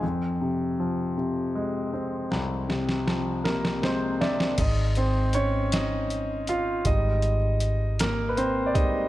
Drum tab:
CC |------------|------------|x-----------|------------|
HH |------------|------------|x-x-x-x-x-x-|x-x-x-x-x-x-|
SD |------------|o-ooo-ooo-oo|------o-----|------o-----|
BD |------------|------------|o-----------|o---------o-|